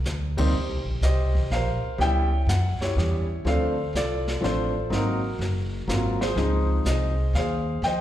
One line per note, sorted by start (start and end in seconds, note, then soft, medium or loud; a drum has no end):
0.00 0.42 A#4 medium
0.04 0.52 D2 medium
0.04 snare medium
0.04 hi-hat pedal soft
0.37 0.52 G3 medium
0.37 0.52 A#3 medium
0.37 0.53 C4 medium
0.37 0.53 D#4 medium
0.37 1.00 G4 soft
0.37 0.83 C5 medium
0.37 kick medium
0.37 ride medium
0.53 0.69 D#2 medium
0.53 brush sweep medium
0.69 0.84 C2 medium
0.85 1.00 A#1 medium
1.01 1.49 C2 medium
1.01 1.80 G4 medium
1.01 1.52 C5 medium
1.01 1.48 D#5 medium
1.01 snare medium
1.01 hi-hat pedal medium
1.35 kick medium
1.50 1.81 A#1 medium
1.50 1.98 A#4 medium
1.50 1.98 C5 medium
1.50 2.02 F5 medium
1.50 snare soft
1.83 muted upright bass stroke soft
1.98 2.46 C#2 medium
1.98 2.28 G3 medium
1.98 2.28 B3 medium
1.98 2.29 C#4 medium
1.98 2.29 E4 medium
1.98 2.78 C#5 medium
1.98 2.78 E5 medium
1.98 2.51 G5 loud
1.98 brush sweep soft
1.98 snare soft
2.47 2.77 F#2 medium
2.47 2.79 F#5 medium
2.47 snare medium
2.47 hi-hat pedal medium
2.80 3.42 E4 medium
2.80 2.96 G4 medium
2.80 3.48 C#5 medium
2.80 muted upright bass stroke soft
2.80 snare soft
2.96 3.44 E2 medium
2.96 3.25 G3 medium
2.96 3.26 B3 soft
2.96 3.26 C#4 soft
2.96 3.26 G4 medium
2.96 snare soft
3.45 3.92 D2 medium
3.45 3.74 F3 medium
3.45 3.75 A3 medium
3.45 3.75 C4 medium
3.45 3.75 D4 medium
3.45 3.95 A4 medium
3.45 4.24 C5 medium
3.45 3.97 F5 medium
3.45 brush sweep soft
3.45 snare soft
3.93 4.41 C2 medium
3.93 4.43 F4 medium
3.93 4.43 A4 medium
3.93 4.45 D5 medium
3.93 snare medium
3.93 hi-hat pedal medium
4.27 snare soft
4.41 4.89 A1 medium
4.41 4.71 F3 medium
4.41 4.71 A3 medium
4.41 4.71 C4 medium
4.41 4.72 D4 medium
4.41 4.89 F4 medium
4.41 4.89 A4 medium
4.41 4.94 C5 medium
4.41 snare soft
4.90 5.38 G#1 medium
4.90 5.20 F#3 medium
4.90 5.20 A#3 medium
4.90 5.20 C4 medium
4.90 5.20 D#4 medium
4.90 6.18 A#4 medium
4.90 brush sweep soft
4.90 snare soft
4.95 6.18 F#4 medium
5.39 5.87 F#1 medium
5.39 snare soft
5.87 6.35 G#1 medium
5.87 6.17 F#3 medium
5.87 6.17 A#3 medium
5.87 6.18 C4 medium
5.87 6.18 F4 medium
5.87 snare medium
5.87 hi-hat pedal medium
6.21 6.83 F4 soft
6.21 6.83 G#4 soft
6.21 6.66 C5 medium
6.21 snare soft
6.36 6.84 C#2 medium
6.36 7.11 F3 medium
6.36 7.12 G#3 medium
6.36 7.12 C4 medium
6.36 7.12 D#4 medium
6.36 brush sweep soft
6.36 snare soft
6.85 7.32 C2 medium
6.85 7.36 G#4 medium
6.85 7.36 C5 medium
6.85 7.31 D#5 medium
6.85 snare medium
6.85 hi-hat pedal medium
7.33 7.81 D#2 medium
7.33 7.81 G#4 medium
7.33 7.85 F5 medium
7.33 snare soft
7.37 7.81 C5 medium
7.82 8.01 F2 medium
7.82 8.01 C5 medium
7.82 8.01 G5 medium
7.82 brush sweep medium
7.82 snare soft
7.86 8.01 D#5 medium